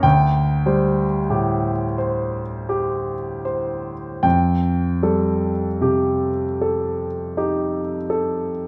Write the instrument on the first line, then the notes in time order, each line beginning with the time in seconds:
grand piano
0.03 D2 G5
0.66 G3 C5
1.30 A2 G4
1.98 C5
2.69 G4
3.45 C5
4.23 F2 G5
5.03 G3 A4
5.81 C3 G4
6.62 A4
7.37 D#4 G4
8.10 A4